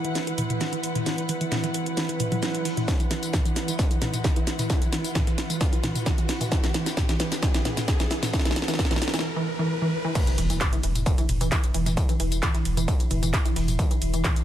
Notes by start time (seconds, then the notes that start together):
Already playing: E3 E4 B4 F#5, riser
0.04 E3, closed hi-hat
0.15 snare, closed hi-hat, shaker
0.27 E3, closed hi-hat
0.38 E3, open hi-hat, mid tom, shaker
0.50 closed hi-hat, mid tom
0.61 E3, snare, closed hi-hat, shaker
0.73 E3, closed hi-hat
0.83 open hi-hat, shaker
0.95 E3, snare, closed hi-hat, mid tom
1.06 E3, snare, closed hi-hat, shaker
1.18 closed hi-hat
1.29 E3, open hi-hat, shaker
1.41 E3, open hi-hat
1.52 snare, closed hi-hat, mid tom, shaker
1.64 E3, snare, closed hi-hat
1.74 E3, open hi-hat, shaker
1.86 closed hi-hat
1.97 E3, snare, closed hi-hat, shaker
2.09 E3, closed hi-hat
2.20 E3, open hi-hat, mid tom, shaker
2.32 F#3, open hi-hat, mid tom
2.43 F#3, snare, closed hi-hat, shaker
2.55 closed hi-hat
2.65 E3, open hi-hat
2.77 E4, closed hi-hat, mid tom
2.88 kick, snare, closed hi-hat, tambourine, shaker
3.00 E3, closed hi-hat, tambourine
3.11 E3, snare, open hi-hat, shaker
3.23 closed hi-hat, tambourine
3.33 E3, kick, snare, closed hi-hat, mid tom, tambourine, shaker
3.45 E3, closed hi-hat, tambourine
3.56 snare, open hi-hat, shaker
3.68 E3, closed hi-hat, tambourine
3.79 kick, snare, closed hi-hat, tambourine, shaker
3.91 E3, closed hi-hat, tambourine
4.02 E3, snare, open hi-hat, mid tom, shaker
4.14 closed hi-hat, mid tom, tambourine
4.24 E3, kick, snare, closed hi-hat, tambourine, shaker
4.36 E3, closed hi-hat, tambourine
4.47 snare, open hi-hat, shaker
4.59 E3, snare, closed hi-hat, mid tom, tambourine
4.70 kick, snare, closed hi-hat, tambourine, shaker
4.82 E3, closed hi-hat, tambourine
4.93 E3, snare, open hi-hat, shaker
5.04 closed hi-hat, tambourine
5.15 E3, kick, snare, closed hi-hat, mid tom, tambourine, shaker
5.27 E3, snare, closed hi-hat, tambourine
5.38 snare, open hi-hat, shaker
5.50 E3, closed hi-hat, tambourine
5.61 kick, snare, closed hi-hat, tambourine, shaker
5.73 E3, closed hi-hat, tambourine
5.83 E3, snare, open hi-hat, mid tom, shaker
5.95 closed hi-hat, mid tom, tambourine
6.06 E3, kick, snare, closed hi-hat, tambourine, shaker
6.18 E3, closed hi-hat, tambourine
6.29 snare, open hi-hat
6.41 E3, closed hi-hat, mid tom, tambourine
6.52 kick, snare, closed hi-hat, tambourine, shaker
6.64 E3, snare, closed hi-hat, tambourine
6.74 E3, snare, open hi-hat, shaker
6.86 snare, closed hi-hat, tambourine
6.97 kick, snare, closed hi-hat, mid tom, tambourine, shaker
7.09 E3, snare, closed hi-hat, tambourine
7.20 E3, snare, open hi-hat, shaker
7.32 snare, closed hi-hat, tambourine
7.43 kick, snare, closed hi-hat, tambourine, shaker
7.54 E3, snare, closed hi-hat, tambourine
7.65 E3, snare, open hi-hat, mid tom, shaker
7.77 snare, closed hi-hat, mid tom, tambourine
7.88 kick, snare, closed hi-hat, tambourine, shaker
8.00 E3, snare, closed hi-hat, tambourine
8.11 E3, snare, open hi-hat, shaker
8.23 snare, closed hi-hat, mid tom, tambourine
8.33 kick, snare, closed hi-hat, tambourine, shaker
8.39 snare
8.45 E3, snare, closed hi-hat, tambourine
8.51 snare
8.56 snare, open hi-hat, shaker
8.62 snare
8.68 E3, snare, open hi-hat, tambourine
8.74 snare
8.79 kick, snare, closed hi-hat, mid tom, tambourine, shaker
8.85 snare
8.91 E3, snare, closed hi-hat, tambourine
8.96 snare
9.02 snare, open hi-hat, shaker
9.08 snare
9.14 E3, snare, closed hi-hat, tambourine
9.19 snare
9.36 E3
9.59 E3
9.82 E3
10.05 E3
10.15 E3 E4, kick, closed hi-hat, crash, ride, tambourine, impact, shaker
10.27 closed hi-hat, ride, tambourine
10.38 E1 E3, open hi-hat, ride, shaker
10.50 E1 E3, closed hi-hat, ride, tambourine
10.61 kick, snare, clap, closed hi-hat, mid tom, ride, tambourine, shaker
10.73 E3, closed hi-hat, ride, tambourine
10.83 E1 E3, open hi-hat, ride, shaker
10.95 E1, closed hi-hat, mid tom, ride, tambourine
11.06 E3, kick, closed hi-hat, ride, tambourine, shaker
11.18 E3, closed hi-hat, ride, tambourine
11.29 E1, open hi-hat, mid tom, ride, shaker
11.41 E1 E3, closed hi-hat, mid tom, ride, tambourine
11.52 E3, kick, snare, clap, closed hi-hat, ride, tambourine, shaker
11.64 closed hi-hat, ride, tambourine
11.74 E1 E3, open hi-hat, ride, shaker
11.86 E1 E3, snare, closed hi-hat, mid tom, ride, tambourine
11.97 kick, closed hi-hat, ride, tambourine, shaker
12.09 E3, closed hi-hat, ride, tambourine
12.20 E1 E3, open hi-hat, ride, shaker
12.32 E1, open hi-hat, ride, tambourine
12.43 E3, kick, snare, clap, closed hi-hat, mid tom, ride, tambourine, shaker
12.55 E3, snare, closed hi-hat, ride, tambourine
12.65 E1, open hi-hat, ride, shaker
12.77 E1 E3, closed hi-hat, mid tom, ride, tambourine
12.88 E3, kick, closed hi-hat, ride, tambourine, shaker
13.00 closed hi-hat, ride, tambourine
13.11 E1 E3, open hi-hat, mid tom, ride, shaker
13.23 E1 E3, closed hi-hat, mid tom, ride, tambourine
13.34 kick, snare, clap, closed hi-hat, ride, tambourine, shaker
13.45 E3, closed hi-hat, ride, tambourine
13.56 E1 E3, open hi-hat, ride
13.68 E1, closed hi-hat, mid tom, ride, tambourine
13.79 E3, kick, closed hi-hat, ride, tambourine, shaker
13.91 E3, closed hi-hat, ride, tambourine
14.02 E1, open hi-hat, ride, shaker
14.14 E1 E3, closed hi-hat, ride, tambourine
14.24 E3, kick, snare, clap, closed hi-hat, mid tom, ride, tambourine, shaker
14.36 closed hi-hat, ride, tambourine